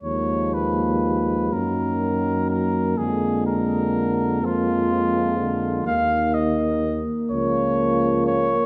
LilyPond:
<<
  \new Staff \with { instrumentName = "Cornet" } { \time 6/8 \key ees \minor \tempo 4. = 41 des''8 ces''4 bes'4 bes'8 | aes'8 bes'4 f'4. | f''8 ees''8 r8 des''4 des''8 | }
  \new Staff \with { instrumentName = "French horn section" } { \time 6/8 \key ees \minor bes2.~ | bes2. | bes2. | }
  \new Staff \with { instrumentName = "Euphonium" } { \clef bass \time 6/8 \key ees \minor aes4. ges4. | aes4. aes4. | bes4 r8 bes4. | }
  \new Staff \with { instrumentName = "Trombone" } { \clef bass \time 6/8 \key ees \minor f4. ees4. | d4. f8 f8 d8 | ees4 r8 f4. | }
  \new Staff \with { instrumentName = "Tuba" } { \clef bass \time 6/8 \key ees \minor ees,4. ges,4. | f,2. | ees,4 r8 des,4. | }
>>